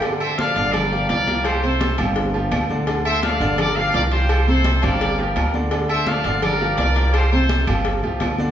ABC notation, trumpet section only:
X:1
M:4/4
L:1/8
Q:1/4=169
K:Gdor
V:1 name="Trumpet section"
z [ce] [df]2 [Bd]2 [Bd]2 | [Gc] [Ac]2 z4 z | z [ce] [df]2 [Bd] [df] [Bd] [Gc]- | [Gc] [Ac]2 [Bd]2 [GB]2 z |
z [ce] [df]2 [Bd]2 [Bd]2 | [Gc] [Ac]2 z4 z |]